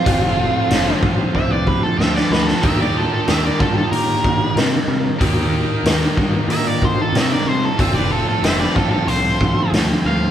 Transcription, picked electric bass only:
\new Staff \with { instrumentName = "Picked electric bass" } { \clef bass \time 4/4 \key f \lydian \tempo 4 = 93 f,,4 f,,8 a,,8 c,4 d,8 d,8 | ees,4 ees,8 g,8 bes,4 c8 c8 | ees,4 ees,8 g,8 bes,4 c8 c8 | f,,4 f,,8 a,,8 c,4 d,8 d,8 | }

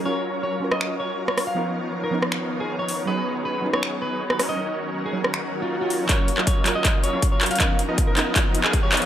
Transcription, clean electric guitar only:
\new Staff \with { instrumentName = "Clean electric guitar" } { \time 4/4 \key fis \major \tempo 4 = 159 cis''8. r16 cis''8 r16 dis''8 r16 cis''8 r16 cis''8 eis''16~ | eis''8 r8. ais'8 r4 gis'8 cis''8 r16 | b'8. r16 b'8 r16 cis''8 r16 b'8 r16 b'8 dis''16~ | dis''8 r8. gis'8 r4 eis'8 eis'8 r16 |
cis''8. r16 cis''8 r16 dis''8 r16 cis''8 r16 cis''8 eis''16~ | eis''8 r8. ais'8 r4 gis'8 cis''8 r16 | }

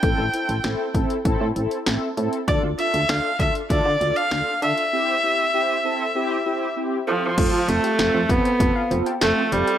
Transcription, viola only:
\new Staff \with { instrumentName = "Viola" } { \time 4/4 \key f \lydian \tempo 4 = 98 g''4 r2. | d''8 e''8 f''8 e''8 d''8. f''8. e''8~ | e''2. r8 f8~ | f8 a4 b4 r8 a8 g8 | }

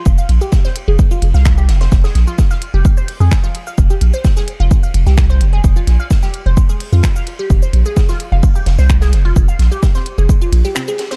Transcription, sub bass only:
\new Staff \with { instrumentName = "Sub bass" } { \clef bass \time 4/4 \key f \minor \tempo 4 = 129 f,,16 r16 bes,,16 r4 f,,16 r8 f,,16 c,8. f,,8 | f,,16 r16 bes,,16 r4 f,,16 r8. f,16 r4 | f,,16 r16 bes,,16 r4 f,,16 r8 f,,16 c,8. f,,8 | f,,16 r16 bes,,16 r4 f,,16 r8. f,16 r4 |
f,,16 r16 bes,,16 r4 f,,16 r8 f,,16 c,8. f,,8 | f,,16 r16 bes,,16 r4 f,,16 r8 bes,,16 r4 r16 | }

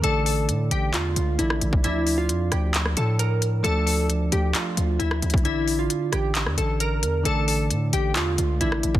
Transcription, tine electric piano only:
\new Staff \with { instrumentName = "Tine electric piano" } { \time 4/4 \key d \minor \tempo 4 = 133 <d a d' a' d''>2. <e a d' a' d''>4 | <f d' d''>1 | <f a d' a' d''>1 | <d d' d''>1 |
<d a d' a' d''>2. <e a d' a' d''>4 | }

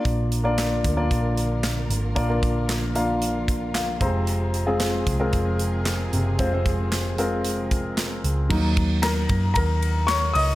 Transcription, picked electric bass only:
\new Staff \with { instrumentName = "Picked electric bass" } { \clef bass \time 4/4 \key f \phrygian \tempo 4 = 114 bes,,4. d,8 bes,,4. aes,,8 | bes,,2.~ bes,,8 f,,8~ | f,,4. c,8 f,,4. ges,,8 | f,,2.~ f,,8 des,8 |
ees,4. ges,8 ees,4. des,8 | }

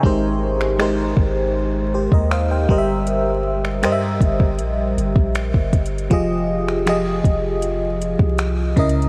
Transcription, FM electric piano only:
\new Staff \with { instrumentName = "FM electric piano" } { \time 4/4 \key f \minor \tempo 4 = 79 << { fes''16 r2 r16 <g' c''>16 <bes' ees''>16 <c'' f''>16 <c'' g''>8 r16 | r1 | r1 | } \\ { <aes ees' g' bes' c''>8 r8 <aes ees' g' bes' c''>4. r4 <g g' bes' c'' ees'' e''>8~ | <g g' bes' c'' ees'' e''>8 r8 <g g' bes' c'' ees'' e''>4. r4. | <f f' g' aes' ees''>8 r8 <f f' g' aes' ees''>4. r4 <des des' fes' bes' ees''>8 | } >> }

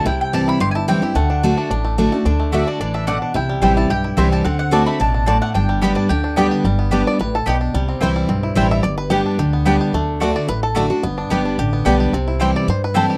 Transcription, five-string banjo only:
\new Staff \with { instrumentName = "Five-string banjo" } { \time 4/4 \key g \major \tempo 4 = 219 << { r1 | r1 | r1 | r1 |
r1 | r1 | r4. d''8 b'8 a'8 g'4~ | g'4. r2 e''8 |
d''8 b'8 g'2~ g'8 r8 | r4. d''8 b'8 a'8 d'4~ | d'4. r2 r8 | r4. d''8 c''8 b'8 a'4 | } \\ { e'4 g'8 e'8 g'8 e'8 c'8 g'8 | a8 d'8 a8 d'8 d'8 a8 d'8 a8 | d'8 a8 d'8 d'8 d'8 d'8 d'8 d'8 | e'8 g8 g'8 e'8 g'8 e'8 c'8 g'8 |
c'4 d'8 a8 d'8 d'8 d'8 a8 | d'8 g8 g'8 d'8 g'8 d'8 b8 g'8 | g8 b8 d'4. r4 d'8 | g8 c'8 e'8 g8 c'8 e'8 g4 |
r4. d'8 g'8 b8 d'8 g'8 | a4 a4. r4 d'8 | b8 d'8 g'8 d'8 g'8 b8 d'8 g'8 | c'8 e'8 g'4. r4 g'8 | } >> }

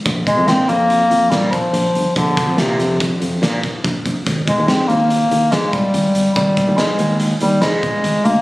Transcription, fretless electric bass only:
\new Staff \with { instrumentName = "Fretless electric bass" } { \clef bass \time 5/4 \key aes \lydian \tempo 4 = 143 bes,,8 r16 f,16 bes,8 f,4 f,8 bes,8 r8 bes,,16 r16 g,,16 r16 | bes,,8 r16 f,16 bes,8 f,4 f,8 bes,8 r8 bes,,16 r16 bes,,16 r16 | aes,,8 r16 ees,16 aes,8 ees,4 ees,8 aes,8 r8 aes,,16 r16 g,,16 r16 | aes,,8 r16 ees,16 aes,8 ees,4 ees,8 aes,8 r8 aes,,16 r16 d,16 r16 | }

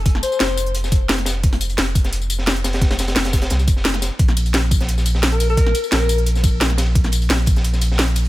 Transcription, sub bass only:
\new Staff \with { instrumentName = "Sub bass" } { \clef bass \time 4/4 \key f \major \tempo 4 = 174 f,,8 r8 f,,2.~ | f,,4 f,,2.~ | f,,4 f,,4 c,8 f,,4 r8 | bes,,1~ |
bes,,8 r8 bes,,2.~ | bes,,4 bes,,2. | }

